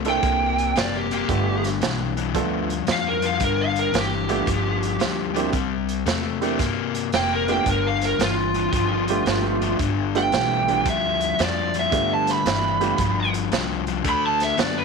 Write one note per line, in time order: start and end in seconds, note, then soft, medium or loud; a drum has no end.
0.00 0.20 C2 medium
0.05 0.21 C3 medium
0.05 0.21 A3 medium
0.05 0.73 A#3 medium
0.05 0.73 C4 medium
0.05 0.73 D4 medium
0.05 0.73 E4 medium
0.05 0.73 A4 medium
0.05 closed hi-hat medium
0.09 0.76 G5 medium
0.22 0.72 C2 medium
0.22 0.72 C3 medium
0.22 0.72 A#3 medium
0.22 kick loud
0.22 closed hi-hat medium
0.58 closed hi-hat medium
0.76 1.25 F#1 medium
0.76 1.07 C3 medium
0.76 1.08 A#3 medium
0.76 0.94 D5 medium
0.76 snare loud
0.76 closed hi-hat medium
0.97 1.12 G4 medium
1.11 1.27 C3 medium
1.11 1.27 A#3 medium
1.11 1.64 G4 medium
1.11 closed hi-hat medium
1.29 1.78 G1 medium
1.29 1.78 G2 medium
1.29 1.78 D3 medium
1.29 1.61 A3 medium
1.29 1.61 B3 medium
1.29 1.61 D4 medium
1.29 1.61 F4 medium
1.29 1.61 G4 medium
1.29 kick loud
1.29 closed hi-hat medium
1.64 snare soft
1.64 closed hi-hat medium
1.81 2.31 B1 medium
1.81 2.13 G2 medium
1.81 2.14 E3 medium
1.81 snare loud
1.81 closed hi-hat medium
2.17 2.33 G2 medium
2.17 2.33 E3 medium
2.17 closed hi-hat medium
2.34 2.84 D2 medium
2.34 2.84 G2 medium
2.34 2.84 F3 medium
2.34 2.66 A3 medium
2.34 2.67 B3 medium
2.34 2.67 D4 medium
2.34 2.67 F4 medium
2.34 2.67 A4 medium
2.34 kick loud
2.34 closed hi-hat medium
2.70 closed hi-hat medium
2.87 3.37 F2 medium
2.87 3.19 G2 medium
2.87 3.19 F3 medium
2.87 snare loud
2.87 closed hi-hat medium
2.92 3.07 F5 medium
3.08 3.24 A#4 medium
3.22 3.39 G2 medium
3.22 3.39 F3 medium
3.22 3.42 F5 medium
3.22 closed hi-hat medium
3.40 3.90 G1 medium
3.40 3.90 G2 medium
3.40 3.90 D3 medium
3.40 3.59 A#4 medium
3.40 kick loud
3.40 closed hi-hat medium
3.61 3.77 F5 medium
3.76 3.95 A#4 medium
3.76 closed hi-hat medium
3.93 4.44 G1 medium
3.93 4.25 G2 medium
3.93 4.25 E3 medium
3.93 snare loud
3.93 closed hi-hat medium
3.98 5.51 G4 medium
4.28 4.44 G2 medium
4.28 4.45 E3 medium
4.28 4.45 A3 medium
4.28 4.46 B3 medium
4.28 4.46 D4 medium
4.28 4.46 F4 medium
4.28 4.46 G4 medium
4.28 closed hi-hat medium
4.46 4.97 G1 medium
4.46 4.96 G2 medium
4.46 4.96 F3 medium
4.46 kick loud
4.46 closed hi-hat medium
4.83 closed hi-hat medium
4.99 5.50 D2 medium
4.99 5.31 G2 medium
4.99 5.31 F3 medium
4.99 snare medium
4.99 closed hi-hat medium
5.34 5.51 G2 medium
5.34 5.51 F3 medium
5.34 5.52 A#3 medium
5.34 5.52 C4 medium
5.34 5.52 D4 medium
5.34 5.52 E4 medium
5.34 5.52 G4 medium
5.34 closed hi-hat medium
5.52 6.03 C2 medium
5.52 6.02 C3 medium
5.52 6.03 G3 medium
5.52 kick loud
5.52 closed hi-hat medium
5.89 closed hi-hat medium
6.06 6.56 E2 medium
6.06 6.38 C3 medium
6.06 6.38 A3 medium
6.06 snare loud
6.06 closed hi-hat medium
6.41 6.58 C3 medium
6.41 6.58 A3 medium
6.41 6.57 A#3 medium
6.41 6.57 C4 medium
6.41 6.58 D4 medium
6.41 6.58 E4 medium
6.41 6.58 G4 medium
6.41 closed hi-hat medium
6.59 7.09 G2 medium
6.59 7.09 C3 medium
6.59 7.09 A#3 medium
6.59 kick loud
6.59 snare soft
6.59 closed hi-hat medium
6.95 closed hi-hat medium
7.12 7.63 F1 medium
7.12 7.45 C3 medium
7.12 7.45 A#3 medium
7.12 7.31 G5 medium
7.12 snare loud
7.12 closed hi-hat medium
7.34 7.49 A#4 medium
7.48 7.64 C3 medium
7.48 7.64 A3 medium
7.48 7.65 A#3 medium
7.48 7.64 B3 medium
7.48 7.64 D4 medium
7.48 7.64 F4 medium
7.48 7.65 G4 medium
7.48 7.67 G5 medium
7.48 closed hi-hat medium
7.66 8.15 G1 medium
7.66 8.16 G2 medium
7.66 8.16 D3 medium
7.66 7.85 A#4 medium
7.66 kick loud
7.66 closed hi-hat medium
7.86 8.02 F5 medium
8.01 8.21 A#4 medium
8.01 snare soft
8.01 closed hi-hat medium
8.19 8.69 G1 medium
8.19 8.51 G2 medium
8.19 8.51 E3 medium
8.19 snare loud
8.19 closed hi-hat medium
8.23 9.77 F4 loud
8.54 8.71 G2 medium
8.54 8.71 E3 medium
8.54 closed hi-hat medium
8.73 9.22 G1 medium
8.73 9.22 G2 medium
8.73 9.22 F3 medium
8.73 kick loud
8.73 closed hi-hat medium
9.08 9.76 A3 medium
9.08 9.76 B3 medium
9.08 9.76 D4 medium
9.08 9.76 F4 medium
9.08 9.76 G4 medium
9.08 closed hi-hat medium
9.26 9.75 G1 medium
9.26 9.58 G2 medium
9.26 9.58 F3 medium
9.26 snare loud
9.26 closed hi-hat medium
9.61 9.77 G2 medium
9.61 9.77 F3 medium
9.61 closed hi-hat medium
9.79 10.29 G1 medium
9.79 10.28 G2 medium
9.79 10.29 D3 medium
9.79 kick loud
9.79 closed hi-hat medium
10.15 10.64 A3 medium
10.15 10.64 B3 medium
10.15 10.64 D4 medium
10.15 10.65 F4 medium
10.15 10.65 G4 medium
10.15 10.85 G5 loud
10.15 closed hi-hat medium
10.32 10.82 B1 medium
10.32 10.64 G2 medium
10.32 10.64 E3 medium
10.32 snare loud
10.32 closed hi-hat medium
10.67 10.84 G2 medium
10.67 10.84 E3 medium
10.67 10.83 A3 medium
10.67 10.84 B3 medium
10.67 10.84 D4 medium
10.67 10.84 F4 medium
10.67 10.84 G4 medium
10.67 closed hi-hat medium
10.85 11.35 D2 medium
10.85 11.35 G2 medium
10.85 11.35 F3 loud
10.85 kick loud
10.85 closed hi-hat medium
10.89 11.39 E5 medium
11.21 closed hi-hat medium
11.38 11.88 F2 medium
11.38 11.70 G2 medium
11.38 11.71 F3 medium
11.38 snare medium
11.38 closed hi-hat medium
11.43 11.75 D5 medium
11.74 11.90 G2 medium
11.74 11.91 F3 medium
11.74 closed hi-hat medium
11.79 12.11 E5 medium
11.91 12.42 G1 medium
11.91 12.41 G2 medium
11.91 12.42 D3 medium
11.91 12.73 A3 medium
11.91 12.73 B3 medium
11.91 12.73 D4 medium
11.91 12.74 F4 medium
11.91 12.74 G4 medium
11.91 kick loud
11.91 closed hi-hat medium
12.14 12.31 A5 medium
12.27 13.32 B5 medium
12.27 snare soft
12.27 closed hi-hat medium
12.45 12.95 G1 medium
12.45 12.77 G2 medium
12.45 12.77 E3 medium
12.45 snare loud
12.45 closed hi-hat medium
12.80 12.97 G2 medium
12.80 12.97 E3 medium
12.80 12.96 A3 medium
12.80 12.96 B3 medium
12.80 12.96 D4 medium
12.80 12.97 F4 medium
12.80 12.97 G4 medium
12.80 closed hi-hat medium
12.98 13.48 G1 medium
12.98 13.48 G2 medium
12.98 13.49 F3 loud
12.98 kick loud
12.98 closed hi-hat medium
13.34 closed hi-hat medium
13.52 14.01 C2 medium
13.52 13.83 G2 medium
13.52 13.84 F3 medium
13.52 snare medium
13.52 closed hi-hat medium
13.87 14.03 G2 medium
13.87 14.03 F3 medium
13.87 closed hi-hat medium
14.04 14.54 D2 medium
14.04 14.54 D3 medium
14.04 14.55 A3 loud
14.04 kick loud
14.04 closed hi-hat medium
14.09 14.24 B5 medium
14.26 14.42 A5 medium
14.40 14.59 E5 medium
14.40 snare soft
14.40 closed hi-hat medium
14.57 14.85 F#2 medium
14.57 14.85 D3 medium
14.57 14.85 B3 medium
14.57 14.76 D5 medium
14.57 snare loud
14.57 closed hi-hat medium
14.78 14.85 B4 medium